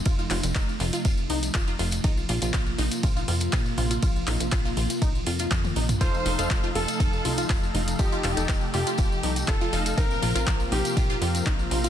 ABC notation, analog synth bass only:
X:1
M:4/4
L:1/16
Q:1/4=121
K:Fmix
V:1 name="Analog synth bass" clef=bass
F,,,2 F,,, F,,, z2 F,,, z F,,,2 C,,2 F,,,2 F,,,2 | B,,,2 B,,, B,,, z2 B,,, z B,,,2 F,,2 B,,,2 B,,,2 | B,,,2 B,,, B,,, B,,,2 B,,, z B,,,2 F,,2 F,,2 B,,,2 | F,,,2 F,,, F,,, F,,,2 F,,, z F,,,2 C,,2 F,,,2 F,,,2 |
F,,,2 F,,, F,,, F,,,2 F,,, z F,,,2 C,,2 F,,,2 F,,,2 | B,,,2 B,,, B,,, B,,,2 B,,, z B,,,2 F,,2 B,,,2 B,,,2 |]